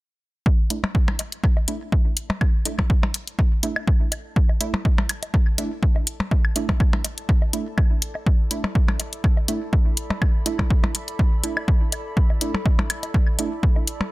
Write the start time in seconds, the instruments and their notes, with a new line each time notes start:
0.46 ambient pad E4, kick, low woodblock
0.70 synth stab A3 D4 E4, closed hi-hat
0.78 ambient pad A4
0.84 percussion blips, low woodblock
0.95 kick
1.08 percussion blips, high woodblock
1.19 closed hi-hat, low woodblock
1.32 closed hi-hat
1.44 ambient pad D5, kick
1.51 ambient pad A5
1.57 low woodblock
1.68 synth stab A3 D4 E4, closed hi-hat
1.92 kick, low woodblock
2.17 closed hi-hat
2.30 percussion blips, low woodblock
2.41 kick, high woodblock
2.65 synth stab A3 D4 E4, closed hi-hat, low woodblock
2.79 kick, percussion blips
2.90 kick
3.03 percussion blips, low woodblock
3.14 closed hi-hat
3.27 closed hi-hat
3.39 kick, low woodblock
3.63 synth stab A3 D4 E4, closed hi-hat
3.76 high woodblock, low woodblock
3.87 kick
4.12 closed hi-hat, low woodblock
4.36 kick
4.49 low woodblock
4.61 synth stab A3 D4 E4, closed hi-hat
4.74 percussion blips
4.85 kick, low woodblock
4.98 percussion blips
5.09 closed hi-hat, high woodblock
5.23 closed hi-hat, low woodblock
5.34 kick
5.58 synth stab A3 D4 E4, closed hi-hat, low woodblock
5.83 kick
5.96 low woodblock
6.07 closed hi-hat
6.20 percussion blips
6.31 kick, low woodblock
6.45 high woodblock
6.56 synth stab A3 D4 E4, closed hi-hat
6.69 kick, percussion blips, low woodblock
6.80 kick
6.93 percussion blips
7.04 closed hi-hat, low woodblock
7.18 closed hi-hat
7.29 kick
7.42 low woodblock
7.53 synth stab A3 D4 E4, closed hi-hat
7.78 kick, high woodblock, low woodblock
8.02 closed hi-hat
8.15 low woodblock
8.26 kick, low woodblock
8.51 synth stab A3 D4 E4, closed hi-hat
8.64 percussion blips, low woodblock
8.75 kick
8.88 percussion blips, high woodblock
9.00 closed hi-hat, low woodblock
9.13 closed hi-hat
9.24 kick
9.32 ambient pad B5
9.37 low woodblock
9.48 synth stab A3 D4 E4, closed hi-hat
9.73 kick, low woodblock
9.97 closed hi-hat
10.10 percussion blips, low woodblock
10.22 kick, high woodblock
10.46 synth stab A3 D4 E4, closed hi-hat, low woodblock
10.59 kick, percussion blips
10.70 kick
10.84 percussion blips, low woodblock
10.95 closed hi-hat
11.08 closed hi-hat
11.19 kick, low woodblock
11.44 synth stab A3 D4 E4, closed hi-hat
11.57 high woodblock, low woodblock
11.68 kick
11.92 closed hi-hat, low woodblock
12.17 kick
12.30 low woodblock
12.41 synth stab A3 D4 E4, closed hi-hat
12.55 percussion blips
12.66 kick, low woodblock
12.79 percussion blips
12.90 closed hi-hat, high woodblock
13.03 closed hi-hat, low woodblock
13.14 kick
13.39 synth stab A3 D4 E4, closed hi-hat, low woodblock
13.63 kick
13.76 low woodblock
13.87 closed hi-hat
14.01 percussion blips